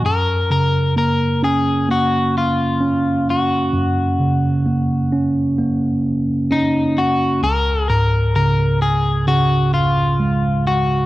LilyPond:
<<
  \new Staff \with { instrumentName = "Clean electric guitar" } { \time 4/4 \key fis \major \tempo 4 = 65 ais'8 ais'8 ais'8 gis'8 fis'8 eis'4 fis'8~ | fis'2~ fis'8 r8 dis'8 fis'8 | ais'8 ais'8 ais'8 gis'8 fis'8 eis'4 fis'8 | }
  \new Staff \with { instrumentName = "Tine electric piano" } { \clef bass \time 4/4 \key fis \major fis,8 cis8 ais8 cis'8 ais4 cis'4 | fis,8 cis8 ais8 cis'8 ais4 cis'4 | cis,8 gis,8 cis4 cis4 gis4 | }
>>